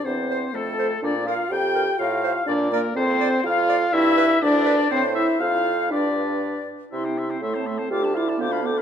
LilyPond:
<<
  \new Staff \with { instrumentName = "Flute" } { \time 2/4 \key bes \lydian \tempo 4 = 123 c''4 a'4 | d''8 f''8 g''4 | f''4 d''8 bes'8 | \key g \mixolydian c''4 f''4 |
e''4 d''4 | c''8 e''8 f''4 | d''4. r8 | c'''16 g''16 c'''16 g''16 c'''16 a''16 c'''16 a''16 |
d'''16 a''16 d'''16 a''16 d'''16 b''16 d'''16 b''16 | }
  \new Staff \with { instrumentName = "Oboe" } { \time 2/4 \key bes \lydian c''4 a'4 | d''8 f''8 g''4 | f''4 d''8 bes'8 | \key g \mixolydian c''4 f''4 |
e''4 d''4 | c''8 e''8 f''4 | d''4. r8 | e''16 c''16 e''16 c''16 e''16 c''16 e''16 c''16 |
f''16 d''16 f''16 d''16 g''16 f''16 g''16 f''16 | }
  \new Staff \with { instrumentName = "Clarinet" } { \time 2/4 \key bes \lydian r8 c''16 r8. c''16 r16 | r8 bes'16 r8. bes'16 r16 | r8 c''16 r8. d''16 r16 | \key g \mixolydian r8 d''16 r8. d''16 r16 |
r8 b'16 r8. b'16 r16 | c''4 c''4 | b'4. r8 | e'16 c'16 e'16 c'16 a16 c'16 a16 c'16 |
f'16 d'16 f'16 d'16 b16 d'16 b16 d'16 | }
  \new Staff \with { instrumentName = "French horn" } { \time 2/4 \key bes \lydian c'4 a4 | d'8 f'8 g'4 | f'4 d'8 bes8 | \key g \mixolydian c'4 f'4 |
e'4 d'4 | c'8 e'8 f'4 | d'4. r8 | e'4 a'4 |
g'8 e'8 f'8 a'8 | }
  \new Staff \with { instrumentName = "Bassoon" } { \clef bass \time 2/4 \key bes \lydian e,4 f,4 | bes,4 f,4 | a,4 bes,4 | \key g \mixolydian f,4 f,4 |
g,4 d,4 | a,4 f,4 | g,4. r8 | c4 a,4 |
d,4 d,4 | }
>>